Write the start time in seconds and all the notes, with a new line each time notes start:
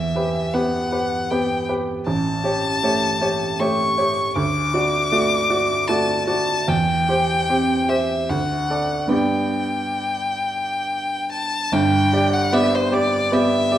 Already playing: E2 E5
0.15 G4 B4
0.53 B3 G4 B4 F#5
0.92 G4 B4
1.31 B3 G4 B4 G5
1.69 G4 B4
2.07 A1 A5
2.44 G4 C#5
2.83 A3 G4 C#5
3.21 G4 C#5
3.60 A3 G4 C#5 C#6
3.98 G4 C#5
4.36 D2 D6
4.74 F#4 D5
5.12 A3 F#4 D5
5.50 F#4 D5
5.88 A3 F#4 D5 A5
6.27 F#4 D5 A5
6.68 E2 G5
7.09 G4 C5
7.49 C4 G4 C5
7.89 G4 C5 E5
8.29 D2 F#5
8.70 A4 D5
9.07 G2 B3 G4 D5
9.13 G5
11.32 A5
11.72 G1 G2 G5
12.13 G4 D5
12.33 F#5
12.53 B3 G4 D5 E5
12.75 C5
12.92 G4 D5
13.32 B3 G4 D5 E5
13.71 G4 D5